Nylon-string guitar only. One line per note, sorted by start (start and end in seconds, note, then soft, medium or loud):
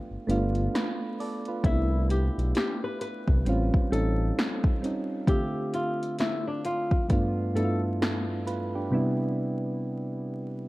1.66 2.06 E4 loud
2.11 2.52 G4 medium
2.56 2.81 G4 medium
2.84 2.99 B4 medium
3.01 3.88 B4 medium
3.92 5.24 A4 medium
5.29 5.69 G4 loud
5.74 6.15 F4 medium
6.20 6.44 E4 medium
6.47 6.63 D4 medium
6.65 7.06 F4 medium
7.56 7.81 A4 medium